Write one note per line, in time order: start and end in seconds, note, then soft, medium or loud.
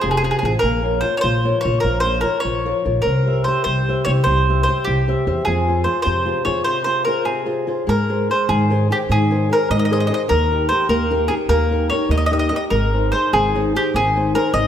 0.00 0.30 F1 medium
0.00 0.42 C3 medium
0.00 0.16 C4 soft
0.00 0.17 F4 soft
0.00 0.17 G#4 soft
0.00 0.10 G#4 medium
0.11 0.16 G#4 medium
0.17 0.23 G#4 medium
0.23 0.41 C4 soft
0.23 0.42 F4 soft
0.23 0.42 G#4 medium
0.23 0.30 G#4 soft
0.31 0.38 G#4 medium
0.39 0.59 C4 soft
0.39 0.44 G#4 soft
0.43 0.56 A1 medium
0.43 0.59 F4 soft
0.43 0.59 G#4 medium
0.43 0.53 G#4 medium
0.59 1.02 A#1 medium
0.59 0.99 A#4 medium
0.64 1.03 A#3 medium
0.82 1.01 F4 soft
0.82 1.01 A#4 soft
0.82 1.02 C#5 soft
1.01 1.35 F4 soft
1.01 1.36 A#4 soft
1.01 1.16 C5 medium
1.01 1.36 C#5 soft
1.17 1.60 C5 medium
1.17 1.21 C#5 medium
1.24 1.50 A#1 medium
1.24 1.63 F3 medium
1.45 1.64 F4 soft
1.45 1.63 A#4 soft
1.45 1.64 C#5 medium
1.61 1.97 F4 soft
1.61 1.80 C#5 medium
1.65 1.78 A#1 medium
1.65 1.97 A#4 soft
1.65 1.97 C#5 soft
1.80 2.23 A#1 medium
1.80 2.23 F3 medium
1.80 2.00 A#4 medium
2.00 2.22 F4 soft
2.00 2.20 C5 medium
2.04 2.22 A#4 soft
2.04 2.22 C#5 soft
2.21 2.57 F4 soft
2.21 2.40 A#4 medium
2.21 2.56 A#4 soft
2.21 2.57 C#5 soft
2.40 2.85 C#5 medium
2.45 2.71 A#1 medium
2.45 2.84 F3 medium
2.65 2.84 F4 soft
2.65 2.84 A#4 soft
2.65 2.85 C#5 soft
2.85 2.98 A#1 medium
2.85 3.01 F4 soft
2.85 3.01 A#4 soft
2.85 3.01 C#5 soft
3.02 3.45 C2 medium
3.02 3.45 C4 soft
3.02 3.41 A#4 medium
3.26 3.46 G4 soft
3.26 3.47 C5 soft
3.26 3.47 E5 soft
3.44 3.80 G4 soft
3.44 3.63 C5 medium
3.44 3.80 C5 soft
3.44 3.80 E5 soft
3.64 3.92 C2 medium
3.64 4.06 G3 soft
3.64 4.03 C5 medium
3.89 4.06 G4 soft
3.89 4.07 C5 soft
3.89 4.07 E5 soft
4.05 4.19 C2 medium
4.05 4.40 G4 soft
4.05 4.40 C5 soft
4.05 4.10 C#5 medium
4.09 4.40 E5 soft
4.24 4.66 C2 medium
4.24 4.62 C5 medium
4.29 4.67 G3 medium
4.49 4.67 G4 soft
4.49 4.67 C5 soft
4.49 4.68 E5 soft
4.63 4.83 C5 medium
4.69 5.00 G4 soft
4.69 5.00 C5 soft
4.69 5.01 E5 soft
4.84 5.13 C2 medium
4.84 5.26 G3 medium
4.84 5.41 G4 medium
5.08 5.26 G4 medium
5.08 5.26 C5 soft
5.08 5.26 E5 medium
5.27 5.39 E2 medium
5.27 5.42 G4 soft
5.27 5.43 C5 soft
5.27 5.43 E5 medium
5.45 5.86 F2 medium
5.45 5.85 F3 medium
5.45 5.83 G#4 medium
5.68 5.84 F4 soft
5.68 5.85 G#4 soft
5.68 5.85 C5 soft
5.84 6.18 F4 soft
5.84 6.18 G#4 soft
5.84 6.01 C5 medium
5.84 6.18 C5 soft
6.02 6.45 C3 medium
6.02 6.41 C5 medium
6.06 6.32 F2 medium
6.25 6.44 F4 soft
6.25 6.43 G#4 soft
6.25 6.44 C5 medium
6.45 6.59 F2 medium
6.45 6.78 F4 soft
6.45 6.78 G#4 soft
6.45 6.78 C5 soft
6.45 6.64 C#5 medium
6.64 7.05 C3 medium
6.64 6.83 C5 medium
6.84 7.05 F4 soft
6.84 7.06 G#4 soft
6.84 7.04 C5 medium
6.84 7.06 C5 soft
7.05 7.39 F4 soft
7.05 7.40 G#4 soft
7.05 7.24 A#4 medium
7.05 7.40 C5 soft
7.25 7.66 C3 medium
7.25 7.69 G#4 medium
7.46 7.66 F4 soft
7.46 7.66 G#4 soft
7.46 7.67 C5 soft
7.67 7.83 F4 soft
7.67 7.84 G#4 soft
7.67 7.84 C5 soft
7.87 8.28 G#2 medium
7.87 8.27 G#3 medium
7.87 8.27 A#4 medium
8.10 8.29 G#4 soft
8.10 8.29 A#4 soft
8.10 8.30 C5 soft
8.30 8.63 G#4 soft
8.30 8.63 A#4 soft
8.30 8.49 C5 medium
8.30 8.63 C5 soft
8.49 8.88 G#2 medium
8.49 8.89 D#3 medium
8.49 8.87 G#4 medium
8.70 8.89 G#4 soft
8.70 8.89 A#4 soft
8.70 8.90 C5 medium
8.90 8.97 G4 medium
8.90 9.23 G#4 soft
8.90 9.23 A#4 soft
8.90 9.23 C5 medium
9.09 9.49 G#2 medium
9.09 9.50 D#3 medium
9.09 9.49 G#4 medium
9.31 9.49 G#4 soft
9.31 9.50 A#4 soft
9.31 9.50 C5 soft
9.50 9.82 G#4 soft
9.50 9.83 A#4 soft
9.50 9.70 A#4 medium
9.50 9.83 C5 soft
9.70 10.09 G#2 medium
9.70 10.10 D#3 medium
9.70 9.78 D#5 medium
9.79 9.84 D#5 medium
9.85 9.91 D#5 medium
9.91 10.08 G#4 soft
9.91 10.09 A#4 soft
9.91 10.09 C5 medium
9.91 9.99 D#5 medium
10.00 10.06 D#5 medium
10.07 10.25 G#4 soft
10.07 10.26 A#4 soft
10.07 10.26 C5 medium
10.07 10.13 D#5 medium
10.14 10.21 D#5 medium
10.28 10.69 D#2 medium
10.28 10.68 D#3 medium
10.28 10.68 A#4 medium
10.51 10.70 D#4 soft
10.51 10.71 G4 soft
10.51 10.71 A#4 soft
10.69 11.03 D#4 soft
10.69 11.03 G4 soft
10.69 11.03 A#4 medium
10.69 10.87 C5 medium
10.89 11.28 D#2 medium
10.89 11.28 A#3 medium
10.89 11.27 A#4 medium
11.10 11.28 D#4 medium
11.10 11.29 G4 soft
11.10 11.29 A#4 medium
11.28 11.62 D#4 soft
11.28 11.62 G4 soft
11.28 11.34 G#4 medium
11.28 11.62 A#4 soft
11.49 11.88 D#2 medium
11.49 11.88 A#3 medium
11.49 11.89 A#4 medium
11.71 11.90 D#4 soft
11.71 11.91 G4 soft
11.71 11.91 A#4 soft
11.90 12.24 D#4 soft
11.90 12.24 G4 soft
11.90 12.24 A#4 medium
11.90 12.08 C#5 medium
12.09 12.49 D#2 medium
12.09 12.50 A#3 medium
12.09 12.16 D#5 medium
12.18 12.25 D#5 medium
12.26 12.32 D#5 medium
12.31 12.50 D#4 soft
12.31 12.50 G4 soft
12.31 12.51 A#4 soft
12.31 12.38 D#5 soft
12.39 12.48 D#5 medium
12.49 12.67 D#4 soft
12.49 12.67 G4 soft
12.49 12.68 A#4 soft
12.49 12.55 D#5 medium
12.56 12.63 D#5 medium
12.70 13.11 G#1 medium
12.70 13.11 G#3 medium
12.70 13.11 A#4 medium
12.93 13.12 D#4 soft
12.93 13.12 G#4 soft
12.93 13.12 C5 soft
13.12 13.46 D#4 soft
13.12 13.46 G#4 soft
13.12 13.31 C5 medium
13.12 13.46 C5 soft
13.33 13.72 G#1 medium
13.33 13.73 D#3 medium
13.33 13.71 G#4 medium
13.55 13.74 D#4 medium
13.55 13.75 G#4 soft
13.55 13.74 C5 soft
13.75 14.07 D#4 soft
13.75 13.93 G4 medium
13.75 14.07 G#4 soft
13.75 14.07 C5 medium
13.94 14.33 G#1 medium
13.94 14.34 D#3 medium
13.94 14.32 G#4 medium
14.16 14.34 D#4 soft
14.16 14.34 G#4 soft
14.16 14.34 C5 soft
14.35 14.67 D#4 soft
14.35 14.66 G#4 soft
14.35 14.53 A#4 medium
14.35 14.67 C5 medium
14.54 14.67 G#1 medium
14.54 14.67 D#3 medium
14.54 14.67 D#5 medium